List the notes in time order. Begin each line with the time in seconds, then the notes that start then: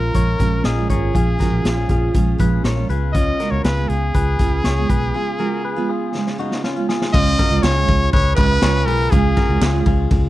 Already playing: A#1 A#2 F3 G#3 C#4 F4 A#4
0.13 A#1 F3 G#3 C#4 F4 A#4 C#5, kick, closed hi-hat
0.39 A#1 A#2 F3 G#3 C#4 F4, kick, closed hi-hat
0.64 A#1 G#4 A#4 D#5, snare, closed hi-hat
0.77 A#2 F3 G#3 C#4 F4
0.89 G#1 G#4 A#4 C#5, kick, closed hi-hat
1.13 A#1 F3 G#3 C#4 F4 G#4, kick, closed hi-hat
1.38 A#2 F3 G#3 C#4 F4 F#4 A#4, kick, snare, closed hi-hat
1.52 A#1
1.64 A#1 F4 G#4, snare, closed hi-hat
1.76 A#2 F3 G#3 C#4 F4
1.89 A#1 F4 G#4, kick, closed hi-hat
2.14 A#1 F3 G#3 C#4 F4, kick, closed hi-hat
2.38 A#1 A#2 F3 G#3 C#4 F4 G#4 B4, kick, closed hi-hat
2.64 A#1 A#4 C#5, snare, closed hi-hat
2.76 A#2 F3 G#3 C#4 F4
2.89 C#2 C#3 G#3 B3 F4 G#4 B4, closed hi-hat
3.13 C#4 F4 D#5, kick, closed hi-hat
3.39 C#3 G#3 B3 F4 F#4 A#4, snare, closed hi-hat
3.51 C#2 C#5
3.64 C#2 F4 G#4 B4, snare, closed hi-hat
3.76 C#3 G#3 B3 F4
3.89 C#2 G#4, closed hi-hat
4.14 C#2 C#3 G#3 B3 F4 G#4 B4, kick, closed hi-hat
4.39 C#2 C#3 G#3 B3 F4, kick, closed hi-hat
4.64 C#2 G#4 C#5, snare, closed hi-hat
4.77 C#3 G#3 B3 F4
4.89 B1 G#4 B4, kick, closed hi-hat
5.14 C#3 G#3 B3 F4 G#4
5.39 C#3 G#3 B3 F4 F#4 A#4
5.65 G#4 B4
5.76 C#3 G#3 B3 F4
5.89 F4 G#4
6.14 C#3 G#3 B3 F4, snare
6.27 snare
6.38 C#3 G#3 B3 D#4 F4 F#4
6.51 snare
6.64 C#4 F4, snare
6.76 C#3 G#3 B3 F4
6.89 F4 G#4, snare
7.02 snare
7.13 C#2 C#3 G#3 C#4 F4 D#5, kick, crash
7.39 F#4 A#4, kick, snare, ride
7.50 C#2 G#3 C#4 F4
7.63 C#2 F4 G#4 C#5, snare, clap, ride
7.75 G#3 C#4 F4
7.88 C#2, kick, ride
8.12 C#2 G#4 B4 C#5, kick, ride
8.35 C#2 C#3 G#3 C#4 B4, kick, clap, ride
8.39 F4
8.61 C#2 C#3 G#3 C#4 F4 G#4 C#5, snare, clap, ride
8.86 B1 C#3 G#3 C#4 F4 G#4 A#4 B4, open hi-hat, ride
9.11 C#2 C#3 G#3 C#4 F4 G#4, kick, hi-hat pedal, ride
9.37 F#4 A#4, kick, snare, ride
9.48 C#2 G#3 C#4 F4
9.61 C#2 F4 G#4, snare, clap, ride
9.73 G#3 C#4 F4
9.86 C#2 F4 G#4, kick, ride
10.11 C#2, kick, ride